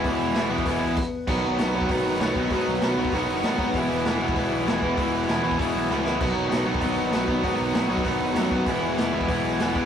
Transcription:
<<
  \new Staff \with { instrumentName = "Overdriven electric guitar" } { \clef bass \time 4/4 \key b \major \tempo 4 = 195 <e gis b e'>4 <e gis b e'>8 <e gis b e'>8 <e gis b e'>4 r4 | <b, dis fis b dis'>4 <b, dis fis b dis'>8 <b, dis fis b dis'>8 <b, dis fis b dis'>4 <b, dis fis b dis'>8 <b, dis fis b dis'>8 | <b, dis fis b dis'>4 <b, dis fis b dis'>8 <b, dis fis b dis'>8 <b, dis fis b dis'>4 <b, dis fis b dis'>8 <b, dis fis b dis'>8 | <e gis b e'>4 <e gis b e'>8 <e gis b e'>8 <e gis b e'>4 <e gis b e'>8 <e gis b e'>8 |
<e gis b e'>4 <e gis b e'>8 <e gis b e'>8 <e gis b e'>4 <e gis b e'>8 <e gis b e'>8 | <b, dis fis b dis'>4 <b, dis fis b dis'>8 <b, dis fis b dis'>8 <b, dis fis b dis'>4 <b, dis fis b dis'>8 <b, dis fis b dis'>8 | <b, dis fis b dis'>4 <b, dis fis b dis'>8 <b, dis fis b dis'>8 <b, dis fis b dis'>4 <b, dis fis b dis'>8 <b, dis fis b dis'>8 | <e gis b e'>4 <e gis b e'>8 <e gis b e'>8 <e gis b e'>4 <e gis b e'>8 <e gis b e'>8 | }
  \new Staff \with { instrumentName = "Overdriven electric guitar" } { \clef bass \time 4/4 \key b \major <e, b, e>4 <e, b, e>8 <e, b, e>8 <e, b, e>4 r4 | <b, fis b>4 <b, fis b>8 <b, fis b>8 <b, fis b>4 <b, fis b>8 <b, fis b>8 | <b, fis b>4 <b, fis b>8 <b, fis b>8 <b, fis b>4 <b, fis b>8 <b, fis b>8 | <e, b, e>4 <e, b, e>8 <e, b, e>8 <e, b, e>4 <e, b, e>8 <e, b, e>8 |
<e, b, e>4 <e, b, e>8 <e, b, e>8 <e, b, e>4 <e, b, e>8 <e, b, e>8 | <b, fis b>4 <b, fis b>8 <b, fis b>8 <b, fis b>4 <b, fis b>8 <b, fis b>8 | <b, fis b>4 <b, fis b>8 <b, fis b>8 <b, fis b>4 <b, fis b>8 <b, fis b>8 | <e, b, e>4 <e, b, e>8 <e, b, e>8 <e, b, e>4 <e, b, e>8 <e, b, e>8 | }
  \new Staff \with { instrumentName = "Picked electric bass" } { \clef bass \time 4/4 \key b \major cis,8 e,,8 e,,8 e,,8 e,,8 cis,8 r4 | b,,8 b,,8 b,,8 b,,8 b,,8 fis,,8 b,,4 | gis,8 b,,8 b,,8 b,,8 b,,8 fis,,8 gis,4 | e,,8 e,,8 e,,8 e,,8 e,,8 b,,8 e,,4 |
cis,8 e,,8 e,,8 e,,8 e,,8 b,,8 cis,4 | b,,8 b,,8 b,,8 b,,8 b,,8 fis,,8 b,,4 | gis,8 b,,8 b,,8 b,,8 b,,8 fis,,8 fis,4 | e,,8 e,,8 e,,8 e,,8 e,,8 b,,8 e,,4 | }
  \new DrumStaff \with { instrumentName = "Drums" } \drummode { \time 4/4 <hho bd>4 <hho sn>8. bd16 <hho bd>4 <cymc bd>4 | <cymc bd>4 <hho sn>8. bd16 <hho bd>4 <hho sn>8 bd8 | <hho bd>4 <hho sn>8. bd16 <hho bd>4 <hho sn>8 bd8 | <hho bd>4 <hho sn>8. bd16 <hho bd>4 <hho sn>8 bd8 |
<hho bd>4 <hho sn>8. bd16 <hho bd>4 sn8 sn8 | <cymc bd>4 <hho sn>8. bd16 <hho bd>4 <hho sn>8 bd8 | <hho bd>4 <hho sn>8. bd16 <hho bd>4 <hho sn>8 bd8 | <hho bd>4 <hho sn>8. bd16 <hho bd>4 <hho sn>8 bd8 | }
>>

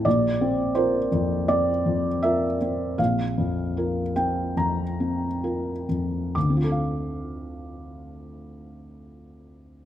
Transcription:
\new Staff \with { instrumentName = "Felt piano" } { \time 4/4 \key d \minor \tempo 4 = 72 << { d''4 c''4 d''4 e''4 | f''4. g''8 bes''4. r8 | <d, d c' f' a' f'' d'''>1 | } \\ { bes,,8 c'8 <f' bes'>8 f,8 c'8 f,8 <f' bes'>8 c'8 | bes,,8 f,8 <f' bes'>8 c'8 f,8 c'8 <f' bes'>8 f,8 | r1 | } >> }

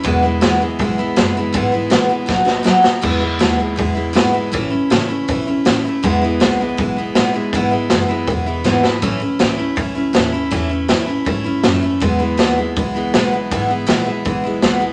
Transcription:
<<
  \new Staff \with { instrumentName = "Steel-string acoustic guitar" } { \time 4/4 \key e \major \tempo 4 = 160 <e, b, e gis b e'>8 <e gis b e'>8 <e, b, e gis b e'>8 <e gis b e'>8 <e gis b e'>8 <e gis b e'>8 <e, b, e gis b e'>8 <e gis b e'>8 | <e, b, e gis b e'>8 <e gis b e'>8 <e, b, e gis b e'>8 <e gis b e'>8 <fis b dis' fis'>8 <b dis' fis'>8 <b, fis b dis' fis'>8 <b dis' fis'>8 | <e, b, e gis b e'>8 <e gis b e'>8 <e, b, e gis b e'>8 <e gis b e'>8 <e gis b e'>8 <e gis b e'>8 <e, b, e gis b e'>8 <e gis b e'>8 | <a, e a cis' e'>8 <a cis' e'>8 <a, e a cis' e'>8 <a cis' e'>8 <e a cis' e'>8 <a cis' e'>8 <a, e a cis' e'>8 <a cis' e'>8 |
<e, b, e gis b e'>8 <e gis b e'>8 <e, b, e gis b e'>8 <e gis b e'>8 <e gis b e'>8 <e gis b e'>8 <e, b, e gis b e'>8 <e gis b e'>8 | <e, b, e gis b e'>8 <e gis b e'>8 <e, b, e gis b e'>8 <e gis b e'>8 <e gis b e'>8 <e gis b e'>8 <e, b, e gis b e'>8 <e gis b e'>8 | <a, e a cis' e'>8 <a cis' e'>8 <a, e a cis' e'>8 <a cis' e'>8 <e a cis' e'>8 <a cis' e'>8 <a, e a cis' e'>8 <a cis' e'>8 | <a, e a cis' e'>8 <a cis' e'>8 <a, e a cis' e'>8 <a cis' e'>8 <e a cis' e'>8 <a cis' e'>8 <a, e a cis' e'>8 <a cis' e'>8 |
<e, b, e gis b e'>8 <e gis b e'>8 <e, b, e gis b e'>8 <e gis b e'>8 <e gis b e'>8 <e gis b e'>8 <e, b, e gis b e'>8 <e gis b e'>8 | <e, b, e gis b e'>8 <e gis b e'>8 <e, b, e gis b e'>8 <e gis b e'>8 <e gis b e'>8 <e gis b e'>8 <e, b, e gis b e'>8 <e gis b e'>8 | }
  \new Staff \with { instrumentName = "Double bass" } { \clef bass \time 4/4 \key e \major e,,2 b,,4 fis,,4 | gis,,4 a,,4 b,,2 | e,4 dis,4 e,4 gis,4 | a,4 cis4 b,4 a,4 |
e,4 cis,4 b,,4 a,,4 | gis,,4 fis,,4 e,,4 gis,,4 | a,,8 a,,8 cis,4 cis,4 dis,4 | e,4 a,4 gis,4 fis,4 |
e,4 dis,4 cis,4 b,,4 | gis,,4 ais,,4 b,,4 cis,4 | }
  \new DrumStaff \with { instrumentName = "Drums" } \drummode { \time 4/4 <hho bd>4 <hho sn>4 <hho bd>4 <hho sn>4 | <hho bd>4 <hho sn>4 <bd sn>8 sn8 sn8 sn8 | <cymc bd>4 <hho sn>4 <hho bd>4 <hho sn>4 | <hho bd>4 <hho sn>4 <hho bd>4 <hho sn>4 |
<hho bd>4 <hho sn>4 <hho bd>4 <hho sn>4 | <hho bd>4 <hho sn>4 <hho bd>4 sn8 sn8 | <hho bd>4 <hho sn>4 <hho bd>4 <hho sn>4 | <hho bd>4 <hho sn>4 <hho bd>4 <hho sn>4 |
<hho bd>4 <hho sn>4 <hho bd>4 <hho sn>4 | <hho bd>4 <hho sn>4 <hho bd>4 <hho sn>4 | }
>>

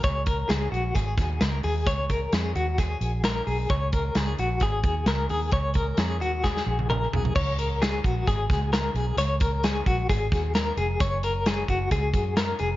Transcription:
<<
  \new Staff \with { instrumentName = "Clean electric guitar" } { \time 4/4 \key cis \mixolydian \tempo 4 = 131 cis''8 ais'8 gis'8 fis'8 gis'4 ais'8 gis'8 | cis''8 ais'8 gis'8 fis'8 gis'4 ais'8 gis'8 | cis''8 ais'8 gis'8 fis'8 gis'4 ais'8 gis'8 | cis''8 ais'8 gis'8 fis'8 gis'4 ais'8 gis'8 |
cis''8 ais'8 gis'8 fis'8 gis'4 ais'8 gis'8 | cis''8 ais'8 gis'8 fis'8 gis'4 ais'8 gis'8 | cis''8 ais'8 gis'8 fis'8 gis'4 ais'8 gis'8 | }
  \new Staff \with { instrumentName = "Fingered electric bass" } { \clef bass \time 4/4 \key cis \mixolydian cis,4 cis,8 ais,,8 gis,,8 dis,8 cis,8 dis,8 | cis,4 eis,8 dis,4 ais,,4 b,,8 | cis,4 cis,8 ais,,8 gis,,8 dis,8 cis,8 dis,8 | cis,4 eis,8 dis,4 ais,,4 b,,8 |
cis,4. ais,,8 gis,,8 cis,4 b,,8 | cis,4. ais,,8 gis,,8 dis,4 eis,,8 | fis,,4. fis,,8 cis,8 fis,4 eis,,8 | }
  \new DrumStaff \with { instrumentName = "Drums" } \drummode { \time 4/4 <hh bd>8 <hh bd>8 <hh sn>8 hh8 <hh bd>8 <hh bd sn>8 <hh sn>8 hho8 | <hh bd>8 <hh bd>8 <hh sn>8 hh8 <hh bd>8 hh8 <hh sn>8 hho8 | <hh bd>8 <hh bd>8 <hh sn>8 hh8 <hh bd>8 <hh bd>8 <hh sn>8 hho8 | <hh bd>8 <hh bd>8 <hh sn>8 hh8 <bd sn>16 sn8 tommh16 toml8 tomfh16 tomfh16 |
<cymc bd>8 hh8 <hh sn>8 <hh bd>8 <hh bd>8 <hh bd sn>8 <hh sn>8 hh8 | hh8 <hh bd>8 <hh sn>8 <hh bd>8 <hh bd>8 <hh bd sn>8 <hh sn>8 hh8 | <hh bd>8 hh8 <hh sn>8 <hh bd>8 <hh bd>8 <hh bd>8 <hh sn>8 hh8 | }
>>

